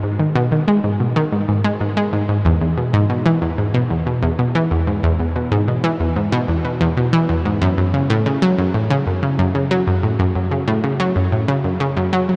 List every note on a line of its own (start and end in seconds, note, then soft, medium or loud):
0.03 0.19 G#2 medium
0.19 0.35 D#3 medium
0.35 0.46 B2 loud
0.52 0.63 D#3 medium
0.68 0.79 G#3 loud
0.84 0.95 G#2 medium
1.00 1.15 B2 medium
1.16 1.23 D#3 loud
1.32 1.43 G#2 medium
1.48 1.64 G#2 medium
1.64 1.75 G#3 loud
1.81 1.96 G#2 medium
1.97 2.03 G#3 loud
2.13 2.19 G#2 medium
2.29 2.40 G#2 medium
2.45 2.52 E2 loud
2.61 2.77 E2 medium
2.77 2.93 B2 medium
2.93 3.04 G#2 loud
3.10 3.21 B2 medium
3.26 3.37 E3 loud
3.42 3.53 E2 medium
3.58 3.73 G#2 medium
3.74 3.81 B2 loud
3.90 4.01 E2 medium
4.06 4.22 B2 medium
4.23 4.29 E2 medium
4.39 4.50 B2 medium
4.55 4.66 E3 loud
4.71 4.82 E2 medium
4.87 5.02 G#2 medium
5.03 5.10 E2 loud
5.19 5.35 E2 medium
5.36 5.51 B2 medium
5.52 5.63 G#2 loud
5.68 5.79 B2 medium
5.84 5.95 E3 loud
6.00 6.11 E2 medium
6.16 6.31 G#2 medium
6.32 6.39 B2 loud
6.48 6.59 E2 medium
6.64 6.80 B2 medium
6.81 6.87 E2 loud
6.97 7.08 B2 medium
7.13 7.24 E3 loud
7.29 7.40 E2 medium
7.45 7.61 G#2 medium
7.61 7.68 F#2 loud
7.77 7.93 F#2 medium
7.94 8.09 C#3 medium
8.10 8.21 A2 loud
8.26 8.37 C#3 medium
8.42 8.53 F#3 loud
8.58 8.69 F#2 medium
8.74 8.90 A2 medium
8.90 8.97 C#3 loud
9.07 9.17 F#2 medium
9.23 9.38 C#3 medium
9.39 9.45 F#2 loud
9.55 9.66 C#3 medium
9.71 9.82 F#3 loud
9.87 9.98 F#2 medium
10.03 10.19 A2 medium
10.19 10.26 F#2 loud
10.35 10.51 F#2 medium
10.51 10.67 C#3 medium
10.68 10.79 A2 loud
10.84 10.95 C#3 medium
11.00 11.11 F#3 loud
11.16 11.27 F#2 medium
11.32 11.47 A2 medium
11.48 11.55 C#3 loud
11.64 11.75 F#2 medium
11.80 11.87 C#3 loud
11.97 12.08 F#2 loud
12.13 12.19 F#3 loud
12.29 12.36 F#3 medium